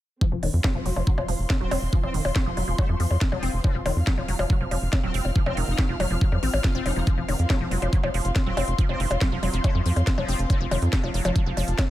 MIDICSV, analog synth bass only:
0, 0, Header, 1, 2, 480
1, 0, Start_track
1, 0, Key_signature, -1, "major"
1, 0, Tempo, 428571
1, 239, Time_signature, 4, 2, 24, 8
1, 13328, End_track
2, 0, Start_track
2, 0, Title_t, "Analog synth bass"
2, 0, Program_c, 0, 38
2, 359, Note_on_c, 0, 29, 84
2, 431, Note_off_c, 0, 29, 0
2, 479, Note_on_c, 0, 29, 97
2, 551, Note_off_c, 0, 29, 0
2, 599, Note_on_c, 0, 41, 86
2, 671, Note_off_c, 0, 41, 0
2, 839, Note_on_c, 0, 29, 82
2, 910, Note_off_c, 0, 29, 0
2, 958, Note_on_c, 0, 29, 101
2, 1031, Note_off_c, 0, 29, 0
2, 1079, Note_on_c, 0, 29, 92
2, 1151, Note_off_c, 0, 29, 0
2, 1319, Note_on_c, 0, 29, 85
2, 1391, Note_off_c, 0, 29, 0
2, 1439, Note_on_c, 0, 29, 100
2, 1511, Note_off_c, 0, 29, 0
2, 1559, Note_on_c, 0, 29, 87
2, 1631, Note_off_c, 0, 29, 0
2, 1799, Note_on_c, 0, 27, 84
2, 1871, Note_off_c, 0, 27, 0
2, 1919, Note_on_c, 0, 29, 103
2, 1991, Note_off_c, 0, 29, 0
2, 2039, Note_on_c, 0, 29, 90
2, 2111, Note_off_c, 0, 29, 0
2, 2279, Note_on_c, 0, 29, 85
2, 2351, Note_off_c, 0, 29, 0
2, 2399, Note_on_c, 0, 29, 102
2, 2471, Note_off_c, 0, 29, 0
2, 2519, Note_on_c, 0, 29, 87
2, 2591, Note_off_c, 0, 29, 0
2, 2759, Note_on_c, 0, 29, 86
2, 2831, Note_off_c, 0, 29, 0
2, 2879, Note_on_c, 0, 29, 98
2, 2951, Note_off_c, 0, 29, 0
2, 2999, Note_on_c, 0, 29, 91
2, 3071, Note_off_c, 0, 29, 0
2, 3239, Note_on_c, 0, 41, 89
2, 3311, Note_off_c, 0, 41, 0
2, 3359, Note_on_c, 0, 41, 97
2, 3431, Note_off_c, 0, 41, 0
2, 3479, Note_on_c, 0, 41, 90
2, 3551, Note_off_c, 0, 41, 0
2, 3719, Note_on_c, 0, 29, 85
2, 3791, Note_off_c, 0, 29, 0
2, 3839, Note_on_c, 0, 29, 100
2, 3911, Note_off_c, 0, 29, 0
2, 3959, Note_on_c, 0, 29, 88
2, 4031, Note_off_c, 0, 29, 0
2, 4199, Note_on_c, 0, 29, 82
2, 4271, Note_off_c, 0, 29, 0
2, 4319, Note_on_c, 0, 29, 101
2, 4391, Note_off_c, 0, 29, 0
2, 4439, Note_on_c, 0, 41, 86
2, 4511, Note_off_c, 0, 41, 0
2, 4679, Note_on_c, 0, 29, 90
2, 4751, Note_off_c, 0, 29, 0
2, 4799, Note_on_c, 0, 29, 103
2, 4871, Note_off_c, 0, 29, 0
2, 4919, Note_on_c, 0, 29, 92
2, 4991, Note_off_c, 0, 29, 0
2, 5159, Note_on_c, 0, 29, 93
2, 5231, Note_off_c, 0, 29, 0
2, 5279, Note_on_c, 0, 29, 97
2, 5351, Note_off_c, 0, 29, 0
2, 5399, Note_on_c, 0, 29, 90
2, 5471, Note_off_c, 0, 29, 0
2, 5639, Note_on_c, 0, 27, 89
2, 5711, Note_off_c, 0, 27, 0
2, 5759, Note_on_c, 0, 29, 101
2, 5831, Note_off_c, 0, 29, 0
2, 5879, Note_on_c, 0, 29, 93
2, 5951, Note_off_c, 0, 29, 0
2, 6119, Note_on_c, 0, 29, 85
2, 6191, Note_off_c, 0, 29, 0
2, 6239, Note_on_c, 0, 29, 104
2, 6311, Note_off_c, 0, 29, 0
2, 6359, Note_on_c, 0, 29, 88
2, 6431, Note_off_c, 0, 29, 0
2, 6599, Note_on_c, 0, 29, 89
2, 6671, Note_off_c, 0, 29, 0
2, 6719, Note_on_c, 0, 29, 99
2, 6791, Note_off_c, 0, 29, 0
2, 6839, Note_on_c, 0, 29, 93
2, 6911, Note_off_c, 0, 29, 0
2, 7079, Note_on_c, 0, 41, 86
2, 7151, Note_off_c, 0, 41, 0
2, 7199, Note_on_c, 0, 33, 100
2, 7271, Note_off_c, 0, 33, 0
2, 7319, Note_on_c, 0, 33, 90
2, 7391, Note_off_c, 0, 33, 0
2, 7559, Note_on_c, 0, 29, 84
2, 7631, Note_off_c, 0, 29, 0
2, 7679, Note_on_c, 0, 29, 104
2, 7751, Note_off_c, 0, 29, 0
2, 7799, Note_on_c, 0, 29, 92
2, 7871, Note_off_c, 0, 29, 0
2, 8039, Note_on_c, 0, 29, 84
2, 8111, Note_off_c, 0, 29, 0
2, 8159, Note_on_c, 0, 29, 100
2, 8231, Note_off_c, 0, 29, 0
2, 8279, Note_on_c, 0, 41, 86
2, 8351, Note_off_c, 0, 41, 0
2, 8519, Note_on_c, 0, 29, 87
2, 8591, Note_off_c, 0, 29, 0
2, 8639, Note_on_c, 0, 29, 97
2, 8711, Note_off_c, 0, 29, 0
2, 8759, Note_on_c, 0, 29, 89
2, 8831, Note_off_c, 0, 29, 0
2, 8999, Note_on_c, 0, 29, 90
2, 9071, Note_off_c, 0, 29, 0
2, 9119, Note_on_c, 0, 29, 94
2, 9191, Note_off_c, 0, 29, 0
2, 9239, Note_on_c, 0, 29, 93
2, 9311, Note_off_c, 0, 29, 0
2, 9479, Note_on_c, 0, 27, 83
2, 9551, Note_off_c, 0, 27, 0
2, 9599, Note_on_c, 0, 29, 107
2, 9671, Note_off_c, 0, 29, 0
2, 9718, Note_on_c, 0, 29, 89
2, 9790, Note_off_c, 0, 29, 0
2, 9958, Note_on_c, 0, 29, 85
2, 10031, Note_off_c, 0, 29, 0
2, 10079, Note_on_c, 0, 29, 102
2, 10151, Note_off_c, 0, 29, 0
2, 10198, Note_on_c, 0, 29, 90
2, 10270, Note_off_c, 0, 29, 0
2, 10439, Note_on_c, 0, 29, 86
2, 10511, Note_off_c, 0, 29, 0
2, 10558, Note_on_c, 0, 29, 103
2, 10630, Note_off_c, 0, 29, 0
2, 10678, Note_on_c, 0, 29, 93
2, 10750, Note_off_c, 0, 29, 0
2, 10918, Note_on_c, 0, 41, 94
2, 10990, Note_off_c, 0, 41, 0
2, 11039, Note_on_c, 0, 41, 96
2, 11111, Note_off_c, 0, 41, 0
2, 11158, Note_on_c, 0, 41, 91
2, 11230, Note_off_c, 0, 41, 0
2, 11399, Note_on_c, 0, 29, 87
2, 11471, Note_off_c, 0, 29, 0
2, 11519, Note_on_c, 0, 29, 104
2, 11591, Note_off_c, 0, 29, 0
2, 11639, Note_on_c, 0, 29, 90
2, 11711, Note_off_c, 0, 29, 0
2, 11879, Note_on_c, 0, 29, 84
2, 11951, Note_off_c, 0, 29, 0
2, 11999, Note_on_c, 0, 29, 101
2, 12071, Note_off_c, 0, 29, 0
2, 12119, Note_on_c, 0, 41, 88
2, 12191, Note_off_c, 0, 41, 0
2, 12359, Note_on_c, 0, 29, 87
2, 12431, Note_off_c, 0, 29, 0
2, 12479, Note_on_c, 0, 29, 99
2, 12551, Note_off_c, 0, 29, 0
2, 12599, Note_on_c, 0, 29, 94
2, 12671, Note_off_c, 0, 29, 0
2, 12839, Note_on_c, 0, 29, 90
2, 12911, Note_off_c, 0, 29, 0
2, 12959, Note_on_c, 0, 29, 99
2, 13031, Note_off_c, 0, 29, 0
2, 13079, Note_on_c, 0, 29, 92
2, 13151, Note_off_c, 0, 29, 0
2, 13328, End_track
0, 0, End_of_file